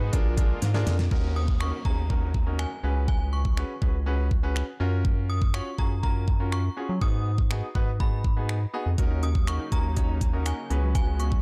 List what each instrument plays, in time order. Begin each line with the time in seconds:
Already playing: supersaw synth D#3 G#3 B3 F#4, grand piano D#4 F#4 G#4 B4
0.01 analog synth bass G#2
0.13 analog synth bass A#1, supersaw synth D3 A#3 F4, grand piano D4 F4 G#4 A#4, kick, closed hi-hat
0.37 grand piano D4 F4 G#4 A#4, kick, closed hi-hat
0.62 analog synth bass G#2, snare, closed hi-hat
0.74 grand piano D4 F4 G#4 A#4, snare
0.87 analog synth bass F2, snare, closed hi-hat
0.99 snare
1.11 analog synth bass D#2, grand piano C#4 D#4 F#4 A#4, kick, downlifter
1.36 synth bell D#6
1.48 kick
1.60 grand piano C#4 D#4 F#4 A#4, synth bell C#6, finger snap
1.85 analog synth bass D#2, grand piano C#4 D#4 F#4 G#4, synth bell A#5, kick
2.10 grand piano C#4 D#4 F#4 A#4, kick
2.34 kick
2.47 grand piano C#4 D#4 F#4 A#4
2.59 synth bell G#5, finger snap
2.83 analog synth bass C#2, grand piano C#4 F#4 G#4 B4
3.08 synth bell G#5, kick
3.33 synth bell C#6
3.45 kick
3.57 grand piano C#4 F#4 G#4 B4, finger snap
3.82 analog synth bass C#2, grand piano C#4 F#4 G#4 B4, kick
4.06 grand piano C#4 F#4 G#4 B4
4.31 kick
4.43 grand piano C#4 F#4 G#4 B4
4.56 finger snap
4.80 analog synth bass F#2, grand piano C#4 F4 F#4 A#4
5.05 kick
5.30 synth bell D#6
5.42 kick
5.54 grand piano C#4 F4 F#4 C#5, synth bell C#6, finger snap
5.78 analog synth bass F#2, grand piano C#4 F4 F#4 G#4, synth bell A#5, kick
6.03 grand piano C#4 F4 F#4 A#4, synth bell A#5, kick
6.28 kick
6.40 grand piano C#4 F4 F#4 A#4
6.52 synth bell C#6, finger snap
6.77 grand piano C#4 F4 F#4 G#4
6.89 analog synth bass F#3
7.01 analog synth bass G#2, grand piano B3 D#4 F#4 G#4, synth bell D#6, kick
7.38 kick
7.50 grand piano B3 D#4 F#4 G#4, finger snap
7.75 analog synth bass G#2, grand piano B3 D#4 F#4 B4, kick
8.00 grand piano B3 D#4 F#4 G#4, synth bell B5, kick
8.24 kick
8.37 grand piano B3 D#4 F#4 G#4
8.49 finger snap
8.74 grand piano B3 D#4 F#4 G#4
8.86 analog synth bass F2
8.98 analog synth bass D#2, supersaw synth C#3 F#3 A#3 D#4, grand piano C#4 D#4 F#4 A#4, synth pluck F#4, kick, closed hi-hat
9.10 synth pluck D#4
9.23 synth pluck C#4, synth bell D#6, closed hi-hat
9.35 synth pluck F#3, kick
9.47 grand piano C#4 D#4 F#4 A#4, synth bell C#6, finger snap, closed hi-hat
9.60 synth pluck D#4
9.72 analog synth bass D#2, grand piano C#4 D#4 F#4 A#4, synth pluck C#4, synth bell A#5, kick, closed hi-hat
9.84 synth pluck F#3
9.96 grand piano C#4 D#4 F#4 C#5, kick, closed hi-hat
10.09 synth pluck D#4
10.21 synth pluck C#4, kick, closed hi-hat
10.33 grand piano C#4 D#4 F#4 A#4
10.46 synth pluck F#4, synth bell G#5, finger snap, closed hi-hat
10.70 analog synth bass C#2, supersaw synth G#3 B3 F#4, synth pluck B3, grand piano C#4 F#4 G#4 B4, closed hi-hat
10.83 synth pluck F#3
10.95 synth pluck F#4, synth bell G#5, kick, closed hi-hat
11.07 synth pluck C#4
11.20 synth pluck B3, synth bell C#6, closed hi-hat
11.32 synth pluck F#3, kick